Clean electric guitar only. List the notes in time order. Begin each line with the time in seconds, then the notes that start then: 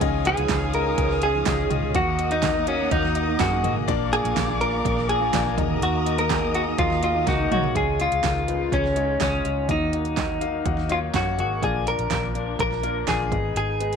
0.27 G#4
0.75 A#4
1.23 G#4
1.96 F#4
2.32 D#4
2.68 C#4
2.92 D#4
3.40 F#4
4.13 G#4
4.61 A#4
5.09 G#4
5.83 F#4
6.19 A#4
6.55 F#4
6.79 F4
7.04 F4
7.28 D#4 F#4
7.52 F#4
7.77 G#4
8.01 F4
8.74 C#4
9.22 C#4
9.71 D#4
10.92 F4
11.16 F#4
11.40 F#4
11.64 G#4
11.88 A#4
12.60 A#4
13.08 G#4
13.57 G#4